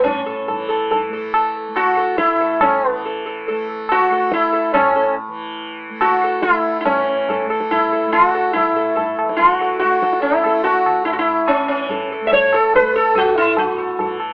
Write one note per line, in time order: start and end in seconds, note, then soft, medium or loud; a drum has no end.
0.00 2.29 A2 medium
0.00 0.50 E3 medium
0.00 1.08 A3 medium
0.00 0.65 C#4 medium
0.05 tabla tin medium
0.05 tabla ge medium
0.26 0.46 A4 soft
0.48 2.89 E3 medium
0.48 0.68 A4 soft
0.48 tabla tin medium
0.48 tabla ge medium
0.69 0.89 A4 soft
0.69 tabla na medium
0.91 1.11 A4 soft
0.91 tabla tin medium
0.91 tabla ge medium
1.08 1.68 A3 medium
1.13 1.32 A4 soft
1.34 1.54 A4 soft
1.34 tabla na medium
1.68 3.49 A3 medium
1.76 2.17 F#4 medium
1.76 tabla na medium
1.97 2.17 A4 soft
2.18 2.62 E4 medium
2.18 tabla ke medium
2.29 4.70 A2 medium
2.41 2.60 A4 soft
2.61 2.88 C#4 medium
2.61 tabla na medium
2.61 tabla ge medium
2.88 5.28 E3 medium
2.88 3.02 B3 medium
3.06 3.25 A4 soft
3.26 3.46 A4 soft
3.48 4.10 A3 medium
3.48 3.67 A4 soft
3.89 4.33 F#4 loud
3.89 tabla na medium
4.10 5.90 A3 medium
4.10 4.31 A4 soft
4.32 4.73 E4 medium
4.32 tabla ke medium
4.53 4.73 A4 soft
4.70 8.64 A2 medium
4.70 5.13 C#4 medium
4.74 tabla na loud
4.74 tabla ge medium
4.96 5.15 A4 soft
5.28 6.86 E3 medium
5.90 6.49 A3 medium
6.01 6.42 F#4 medium
6.01 tabla na medium
6.24 6.43 A4 soft
6.42 6.76 E4 medium
6.42 tabla ke medium
6.49 7.45 A3 medium
6.81 6.85 E4 medium
6.85 9.23 E3 medium
6.85 7.45 C#4 medium
6.85 tabla tin medium
6.85 tabla ge medium
7.29 7.49 A4 soft
7.29 tabla tin medium
7.29 tabla ge medium
7.45 8.06 A3 medium
7.50 7.69 A4 soft
7.50 tabla na medium
7.60 tabla ke medium
7.71 8.12 E4 medium
7.71 tabla tin medium
7.71 tabla ge medium
7.92 8.12 A4 soft
8.06 9.83 A3 medium
8.12 8.27 F4 medium
8.12 tabla na medium
8.27 8.53 F#4 medium
8.35 8.54 A4 soft
8.35 tabla na medium
8.53 9.36 E4 medium
8.53 tabla tin medium
8.53 tabla ge medium
8.64 11.03 A2 medium
8.76 8.95 A4 soft
8.96 9.16 A4 soft
8.96 tabla tin medium
8.96 tabla ge medium
9.19 tabla na medium
9.23 11.62 E3 medium
9.29 tabla ke medium
9.37 9.52 F4 medium
9.37 tabla tin medium
9.37 tabla ge medium
9.52 9.78 F#4 medium
9.61 9.80 A4 soft
9.79 10.44 A3 medium
9.79 10.21 F#4 medium
9.79 tabla te medium
9.92 tabla te medium
10.03 10.22 A4 soft
10.03 tabla ke medium
10.13 tabla te medium
10.22 10.63 E4 medium
10.22 tabla tin medium
10.44 12.21 A3 medium
10.44 10.65 A4 soft
10.44 tabla na medium
10.64 11.05 F#4 medium
10.64 tabla tin medium
10.86 tabla na medium
11.03 13.38 A2 medium
11.03 11.13 E4 medium
11.03 tabla tin medium
11.13 11.18 F#4 medium
11.19 11.49 E4 medium
11.48 11.67 C#4 medium
11.48 tabla na medium
11.63 13.98 E3 medium
11.68 12.08 C#4 medium
11.89 12.10 A4 soft
11.89 tabla tin medium
11.89 tabla ge medium
12.12 12.27 A4 soft
12.21 12.79 A3 medium
12.27 12.32 E5 medium
12.32 12.54 C#5 medium
12.32 tabla tin medium
12.32 tabla ge medium
12.53 12.75 A4 medium
12.53 tabla na medium
12.74 12.95 B4 medium
12.74 tabla tin medium
12.74 tabla ge medium
12.79 14.33 A3 medium
12.96 13.17 A4 medium
13.15 13.37 F#4 medium
13.15 tabla na medium
13.15 tabla ge medium
13.35 14.33 A2 medium
13.35 13.58 E4 medium
13.35 tabla te medium
13.57 14.17 F#4 medium
13.57 tabla tin medium
13.57 tabla ge medium
13.78 13.98 A4 soft
13.98 14.33 E3 medium
13.98 14.20 A4 soft
13.98 tabla tin medium
13.98 tabla ge medium
14.20 tabla na medium